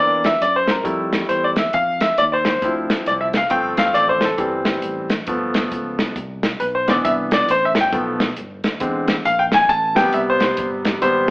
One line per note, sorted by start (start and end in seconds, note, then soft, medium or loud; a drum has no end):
0.00 0.35 E2 medium
0.00 0.29 E3 soft
0.00 0.30 A#3 soft
0.00 0.30 D4 medium
0.00 0.26 D5 medium
0.24 0.40 E5 medium
0.24 snare loud
0.24 closed hi-hat medium
0.41 0.79 F#2 medium
0.41 0.55 D5 medium
0.41 closed hi-hat medium
0.56 0.71 C5 medium
0.68 0.93 A#4 medium
0.68 snare loud
0.68 closed hi-hat medium
0.84 1.22 F2 loud
0.84 1.53 G3 soft
0.84 1.53 A3 soft
0.84 1.53 E4 medium
0.84 kick loud
0.84 closed hi-hat medium
1.13 snare loud
1.13 closed hi-hat medium
1.29 1.67 E2 medium
1.29 1.44 C5 medium
1.29 closed hi-hat medium
1.44 1.49 D5 medium
1.56 1.74 E5 medium
1.56 snare loud
1.56 closed hi-hat medium
1.73 2.12 F2 medium
1.73 2.02 F5 medium
1.73 kick loud
1.73 closed hi-hat medium
2.01 2.19 E5 medium
2.01 snare loud
2.01 closed hi-hat medium
2.18 2.56 D#2 medium
2.18 2.23 D5 medium
2.18 closed hi-hat medium
2.32 2.48 C5 medium
2.32 2.34 D5 medium
2.45 snare loud
2.45 closed hi-hat medium
2.50 2.71 C5 medium
2.62 3.00 D2 medium
2.62 3.31 F3 soft
2.62 3.32 C4 soft
2.62 3.32 E4 medium
2.62 kick loud
2.62 closed hi-hat medium
2.90 snare loud
2.90 closed hi-hat medium
3.06 3.45 C2 medium
3.06 3.12 D5 medium
3.06 closed hi-hat medium
3.21 3.26 E5 medium
3.33 3.50 F5 medium
3.33 snare loud
3.33 closed hi-hat medium
3.50 3.89 G1 loud
3.50 4.19 F3 medium
3.50 4.19 A3 medium
3.50 4.19 C4 medium
3.50 3.77 G5 loud
3.50 kick loud
3.50 closed hi-hat medium
3.77 3.95 F5 medium
3.77 snare loud
3.77 closed hi-hat medium
3.94 4.33 A1 medium
3.94 4.07 D5 medium
3.94 closed hi-hat medium
4.08 4.25 C5 medium
4.08 4.10 D5 medium
4.21 snare loud
4.21 closed hi-hat medium
4.25 4.47 A4 medium
4.37 4.77 G1 loud
4.37 5.07 E3 medium
4.37 5.07 G3 soft
4.37 5.07 C4 medium
4.37 kick loud
4.37 closed hi-hat medium
4.65 snare loud
4.65 closed hi-hat medium
4.82 5.21 A1 medium
4.82 closed hi-hat medium
5.10 snare loud
5.10 closed hi-hat medium
5.27 5.65 G1 loud
5.27 6.12 F3 medium
5.27 6.12 A3 soft
5.27 6.13 B3 medium
5.27 kick loud
5.27 closed hi-hat medium
5.54 snare loud
5.54 closed hi-hat medium
5.72 6.10 C#2 medium
5.72 kick medium
5.72 closed hi-hat medium
5.99 snare loud
5.99 closed hi-hat medium
6.16 6.54 C2 medium
6.16 kick loud
6.16 closed hi-hat medium
6.43 snare loud
6.43 closed hi-hat medium
6.60 6.98 B1 medium
6.60 6.65 B4 medium
6.60 closed hi-hat medium
6.75 6.90 C5 medium
6.88 7.46 E3 medium
6.88 7.46 B3 soft
6.88 7.46 D4 medium
6.88 6.95 D5 medium
6.88 snare medium
6.88 closed hi-hat medium
7.05 7.43 C2 medium
7.05 7.11 E5 medium
7.05 kick loud
7.05 closed hi-hat loud
7.31 7.50 D5 medium
7.31 snare loud
7.31 closed hi-hat medium
7.48 7.72 A1 medium
7.48 7.64 C5 medium
7.48 closed hi-hat loud
7.65 7.70 E5 medium
7.75 7.91 G1 loud
7.75 snare loud
7.75 closed hi-hat medium
7.81 8.02 G5 medium
7.92 8.31 B1 loud
7.92 8.25 F3 soft
7.92 8.25 A3 soft
7.92 8.26 B3 medium
7.92 kick loud
7.92 closed hi-hat medium
8.20 snare loud
8.20 closed hi-hat medium
8.36 8.61 G1 medium
8.36 closed hi-hat medium
8.64 8.79 D2 medium
8.64 snare loud
8.64 closed hi-hat medium
8.80 9.19 E2 medium
8.80 9.13 D3 soft
8.80 9.14 G#3 medium
8.80 9.14 C4 medium
8.80 kick loud
8.80 closed hi-hat loud
9.08 snare loud
9.08 closed hi-hat medium
9.25 9.63 A#1 loud
9.25 9.41 F5 medium
9.25 closed hi-hat medium
9.39 9.44 G5 medium
9.52 9.70 G#5 loud
9.52 snare loud
9.52 closed hi-hat medium
9.69 10.07 A1 loud
9.69 9.98 A5 medium
9.69 kick loud
9.69 closed hi-hat medium
9.95 11.00 C3 medium
9.95 11.01 G3 soft
9.95 11.01 B3 medium
9.95 10.12 G5 loud
9.95 snare loud
9.95 closed hi-hat medium
10.13 10.52 C2 loud
10.13 10.19 E5 medium
10.13 closed hi-hat medium
10.30 10.43 C5 medium
10.40 10.66 C5 medium
10.40 snare loud
10.40 closed hi-hat medium
10.57 10.96 G1 loud
10.57 kick loud
10.57 closed hi-hat medium
10.85 snare loud
10.85 closed hi-hat medium
11.01 11.30 G#1 loud
11.01 11.27 C3 medium
11.01 11.27 G3 medium
11.01 11.27 B3 medium
11.01 11.30 C5 medium
11.01 closed hi-hat medium